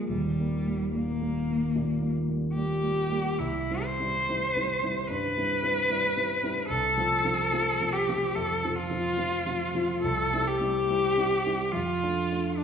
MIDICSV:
0, 0, Header, 1, 3, 480
1, 0, Start_track
1, 0, Tempo, 810811
1, 66, Time_signature, 4, 2, 24, 8
1, 1505, Tempo, 863309
1, 2465, Tempo, 818554
1, 5345, Tempo, 860832
1, 7273, End_track
2, 0, Start_track
2, 0, Title_t, "Cello"
2, 0, Program_c, 0, 42
2, 58, Note_on_c, 0, 55, 73
2, 545, Note_off_c, 0, 55, 0
2, 558, Note_on_c, 0, 58, 84
2, 1254, Note_off_c, 0, 58, 0
2, 1503, Note_on_c, 0, 67, 91
2, 1974, Note_on_c, 0, 64, 87
2, 1983, Note_off_c, 0, 67, 0
2, 2227, Note_on_c, 0, 72, 103
2, 2235, Note_off_c, 0, 64, 0
2, 2937, Note_on_c, 0, 71, 110
2, 2946, Note_off_c, 0, 72, 0
2, 3881, Note_off_c, 0, 71, 0
2, 3885, Note_on_c, 0, 69, 112
2, 4611, Note_on_c, 0, 67, 93
2, 4620, Note_off_c, 0, 69, 0
2, 4860, Note_on_c, 0, 69, 105
2, 4868, Note_off_c, 0, 67, 0
2, 5095, Note_on_c, 0, 65, 97
2, 5103, Note_off_c, 0, 69, 0
2, 5815, Note_off_c, 0, 65, 0
2, 5819, Note_on_c, 0, 69, 103
2, 6068, Note_on_c, 0, 67, 106
2, 6076, Note_off_c, 0, 69, 0
2, 6761, Note_on_c, 0, 65, 96
2, 6770, Note_off_c, 0, 67, 0
2, 7240, Note_on_c, 0, 62, 88
2, 7248, Note_off_c, 0, 65, 0
2, 7273, Note_off_c, 0, 62, 0
2, 7273, End_track
3, 0, Start_track
3, 0, Title_t, "Grand piano"
3, 0, Program_c, 1, 0
3, 0, Control_c, 1, 64, 127
3, 0, Note_on_c, 1, 38, 45
3, 0, Note_on_c, 1, 53, 46
3, 0, Note_on_c, 1, 56, 45
3, 0, Note_on_c, 1, 58, 47
3, 54, Note_on_c, 1, 27, 56
3, 61, Note_on_c, 1, 39, 52
3, 77, Control_c, 1, 64, 0
3, 78, Note_off_c, 1, 53, 0
3, 79, Note_off_c, 1, 38, 0
3, 80, Note_off_c, 1, 58, 0
3, 82, Note_off_c, 1, 56, 0
3, 157, Control_c, 1, 64, 127
3, 219, Note_off_c, 1, 27, 0
3, 222, Note_off_c, 1, 39, 0
3, 232, Note_on_c, 1, 55, 48
3, 235, Note_on_c, 1, 58, 46
3, 379, Note_off_c, 1, 55, 0
3, 381, Note_off_c, 1, 58, 0
3, 392, Note_on_c, 1, 55, 46
3, 396, Note_on_c, 1, 58, 46
3, 541, Note_off_c, 1, 55, 0
3, 543, Note_off_c, 1, 58, 0
3, 560, Note_on_c, 1, 55, 44
3, 562, Note_on_c, 1, 58, 47
3, 705, Note_off_c, 1, 55, 0
3, 707, Note_off_c, 1, 58, 0
3, 717, Note_on_c, 1, 55, 42
3, 719, Note_on_c, 1, 58, 46
3, 861, Note_off_c, 1, 55, 0
3, 862, Note_off_c, 1, 58, 0
3, 884, Note_on_c, 1, 55, 39
3, 889, Note_on_c, 1, 58, 48
3, 1022, Note_off_c, 1, 55, 0
3, 1025, Note_off_c, 1, 58, 0
3, 1039, Note_on_c, 1, 46, 49
3, 1188, Note_off_c, 1, 46, 0
3, 1190, Note_on_c, 1, 55, 39
3, 1194, Note_on_c, 1, 58, 47
3, 1331, Note_off_c, 1, 55, 0
3, 1333, Note_off_c, 1, 58, 0
3, 1354, Note_on_c, 1, 58, 48
3, 1355, Note_on_c, 1, 55, 40
3, 1493, Note_off_c, 1, 55, 0
3, 1493, Note_off_c, 1, 58, 0
3, 1517, Note_on_c, 1, 58, 45
3, 1518, Note_on_c, 1, 55, 42
3, 1647, Note_off_c, 1, 55, 0
3, 1647, Note_off_c, 1, 58, 0
3, 1663, Note_on_c, 1, 55, 43
3, 1664, Note_on_c, 1, 58, 43
3, 1799, Note_off_c, 1, 55, 0
3, 1799, Note_off_c, 1, 58, 0
3, 1814, Note_on_c, 1, 55, 49
3, 1816, Note_on_c, 1, 58, 58
3, 1961, Note_off_c, 1, 55, 0
3, 1962, Note_off_c, 1, 58, 0
3, 1979, Note_on_c, 1, 36, 58
3, 1986, Control_c, 1, 64, 0
3, 2068, Control_c, 1, 64, 127
3, 2141, Note_off_c, 1, 36, 0
3, 2150, Note_on_c, 1, 55, 48
3, 2154, Note_on_c, 1, 60, 53
3, 2156, Note_on_c, 1, 64, 53
3, 2295, Note_off_c, 1, 55, 0
3, 2296, Note_off_c, 1, 60, 0
3, 2298, Note_off_c, 1, 64, 0
3, 2314, Note_on_c, 1, 60, 49
3, 2317, Note_on_c, 1, 55, 47
3, 2320, Note_on_c, 1, 64, 52
3, 2453, Note_off_c, 1, 60, 0
3, 2454, Note_off_c, 1, 55, 0
3, 2456, Note_off_c, 1, 64, 0
3, 2475, Note_on_c, 1, 55, 49
3, 2479, Note_on_c, 1, 60, 51
3, 2479, Note_on_c, 1, 64, 56
3, 2615, Note_off_c, 1, 55, 0
3, 2617, Note_off_c, 1, 64, 0
3, 2618, Note_off_c, 1, 60, 0
3, 2639, Note_on_c, 1, 55, 51
3, 2640, Note_on_c, 1, 60, 48
3, 2641, Note_on_c, 1, 64, 51
3, 2775, Note_off_c, 1, 55, 0
3, 2776, Note_off_c, 1, 60, 0
3, 2776, Note_off_c, 1, 64, 0
3, 2794, Note_on_c, 1, 55, 45
3, 2796, Note_on_c, 1, 60, 47
3, 2799, Note_on_c, 1, 64, 55
3, 2930, Note_off_c, 1, 55, 0
3, 2931, Note_off_c, 1, 60, 0
3, 2933, Note_off_c, 1, 64, 0
3, 2952, Note_on_c, 1, 43, 63
3, 3097, Note_off_c, 1, 43, 0
3, 3113, Note_on_c, 1, 55, 45
3, 3114, Note_on_c, 1, 64, 49
3, 3115, Note_on_c, 1, 60, 44
3, 3246, Note_off_c, 1, 55, 0
3, 3247, Note_off_c, 1, 60, 0
3, 3247, Note_off_c, 1, 64, 0
3, 3262, Note_on_c, 1, 55, 55
3, 3263, Note_on_c, 1, 60, 54
3, 3267, Note_on_c, 1, 64, 52
3, 3400, Note_off_c, 1, 55, 0
3, 3400, Note_off_c, 1, 60, 0
3, 3402, Note_off_c, 1, 64, 0
3, 3419, Note_on_c, 1, 60, 45
3, 3421, Note_on_c, 1, 55, 51
3, 3426, Note_on_c, 1, 64, 52
3, 3559, Note_off_c, 1, 55, 0
3, 3559, Note_off_c, 1, 60, 0
3, 3562, Note_off_c, 1, 64, 0
3, 3575, Note_on_c, 1, 55, 51
3, 3580, Note_on_c, 1, 60, 50
3, 3581, Note_on_c, 1, 64, 50
3, 3717, Note_off_c, 1, 55, 0
3, 3720, Note_off_c, 1, 60, 0
3, 3720, Note_off_c, 1, 64, 0
3, 3734, Note_on_c, 1, 55, 55
3, 3734, Note_on_c, 1, 60, 61
3, 3739, Note_on_c, 1, 64, 59
3, 3876, Note_off_c, 1, 55, 0
3, 3876, Note_off_c, 1, 60, 0
3, 3879, Note_off_c, 1, 64, 0
3, 3890, Note_on_c, 1, 36, 74
3, 3901, Control_c, 1, 64, 0
3, 4000, Control_c, 1, 64, 127
3, 4045, Note_off_c, 1, 36, 0
3, 4051, Note_on_c, 1, 53, 59
3, 4055, Note_on_c, 1, 65, 56
3, 4057, Note_on_c, 1, 60, 56
3, 4195, Note_off_c, 1, 53, 0
3, 4197, Note_off_c, 1, 65, 0
3, 4198, Note_off_c, 1, 60, 0
3, 4212, Note_on_c, 1, 53, 53
3, 4213, Note_on_c, 1, 60, 57
3, 4217, Note_on_c, 1, 65, 55
3, 4357, Note_off_c, 1, 53, 0
3, 4358, Note_off_c, 1, 60, 0
3, 4360, Note_off_c, 1, 65, 0
3, 4378, Note_on_c, 1, 53, 52
3, 4378, Note_on_c, 1, 60, 54
3, 4381, Note_on_c, 1, 65, 61
3, 4523, Note_off_c, 1, 53, 0
3, 4523, Note_off_c, 1, 60, 0
3, 4525, Note_off_c, 1, 65, 0
3, 4542, Note_on_c, 1, 53, 47
3, 4548, Note_on_c, 1, 60, 54
3, 4549, Note_on_c, 1, 65, 57
3, 4687, Note_off_c, 1, 53, 0
3, 4690, Note_off_c, 1, 60, 0
3, 4690, Note_off_c, 1, 65, 0
3, 4703, Note_on_c, 1, 53, 53
3, 4706, Note_on_c, 1, 65, 66
3, 4707, Note_on_c, 1, 60, 53
3, 4846, Note_off_c, 1, 53, 0
3, 4848, Note_off_c, 1, 65, 0
3, 4849, Note_off_c, 1, 60, 0
3, 4864, Note_on_c, 1, 41, 60
3, 5017, Note_off_c, 1, 41, 0
3, 5030, Note_on_c, 1, 60, 50
3, 5032, Note_on_c, 1, 53, 54
3, 5033, Note_on_c, 1, 65, 48
3, 5169, Note_off_c, 1, 60, 0
3, 5170, Note_off_c, 1, 53, 0
3, 5171, Note_off_c, 1, 65, 0
3, 5186, Note_on_c, 1, 53, 50
3, 5189, Note_on_c, 1, 60, 54
3, 5190, Note_on_c, 1, 65, 60
3, 5331, Note_off_c, 1, 53, 0
3, 5333, Note_off_c, 1, 60, 0
3, 5333, Note_off_c, 1, 65, 0
3, 5342, Note_on_c, 1, 53, 54
3, 5347, Note_on_c, 1, 60, 59
3, 5348, Note_on_c, 1, 65, 62
3, 5486, Note_off_c, 1, 53, 0
3, 5489, Note_off_c, 1, 60, 0
3, 5490, Note_off_c, 1, 65, 0
3, 5503, Note_on_c, 1, 53, 50
3, 5504, Note_on_c, 1, 60, 53
3, 5508, Note_on_c, 1, 65, 58
3, 5649, Note_off_c, 1, 53, 0
3, 5649, Note_off_c, 1, 60, 0
3, 5651, Note_off_c, 1, 65, 0
3, 5662, Note_on_c, 1, 53, 62
3, 5666, Note_on_c, 1, 60, 66
3, 5669, Note_on_c, 1, 65, 72
3, 5809, Note_off_c, 1, 53, 0
3, 5811, Note_off_c, 1, 60, 0
3, 5813, Note_off_c, 1, 65, 0
3, 5822, Note_on_c, 1, 36, 72
3, 5838, Control_c, 1, 64, 0
3, 5927, Control_c, 1, 64, 127
3, 5981, Note_off_c, 1, 36, 0
3, 5985, Note_on_c, 1, 55, 60
3, 5989, Note_on_c, 1, 60, 52
3, 5992, Note_on_c, 1, 64, 63
3, 6132, Note_off_c, 1, 55, 0
3, 6133, Note_off_c, 1, 60, 0
3, 6135, Note_off_c, 1, 64, 0
3, 6140, Note_on_c, 1, 55, 59
3, 6144, Note_on_c, 1, 60, 59
3, 6144, Note_on_c, 1, 64, 61
3, 6287, Note_off_c, 1, 55, 0
3, 6289, Note_off_c, 1, 60, 0
3, 6289, Note_off_c, 1, 64, 0
3, 6300, Note_on_c, 1, 55, 55
3, 6304, Note_on_c, 1, 60, 50
3, 6306, Note_on_c, 1, 64, 60
3, 6444, Note_off_c, 1, 55, 0
3, 6446, Note_off_c, 1, 60, 0
3, 6447, Note_off_c, 1, 64, 0
3, 6458, Note_on_c, 1, 55, 49
3, 6458, Note_on_c, 1, 60, 48
3, 6463, Note_on_c, 1, 64, 55
3, 6600, Note_off_c, 1, 55, 0
3, 6600, Note_off_c, 1, 60, 0
3, 6602, Note_off_c, 1, 64, 0
3, 6615, Note_on_c, 1, 55, 47
3, 6617, Note_on_c, 1, 60, 50
3, 6618, Note_on_c, 1, 64, 54
3, 6757, Note_off_c, 1, 55, 0
3, 6758, Note_off_c, 1, 60, 0
3, 6759, Note_off_c, 1, 64, 0
3, 6769, Note_on_c, 1, 41, 67
3, 6785, Control_c, 1, 64, 0
3, 6887, Control_c, 1, 64, 127
3, 6926, Note_off_c, 1, 41, 0
3, 6933, Note_on_c, 1, 57, 47
3, 6935, Note_on_c, 1, 62, 52
3, 7080, Note_off_c, 1, 57, 0
3, 7081, Note_off_c, 1, 62, 0
3, 7093, Note_on_c, 1, 57, 55
3, 7095, Note_on_c, 1, 62, 53
3, 7244, Note_off_c, 1, 57, 0
3, 7245, Note_off_c, 1, 62, 0
3, 7273, End_track
0, 0, End_of_file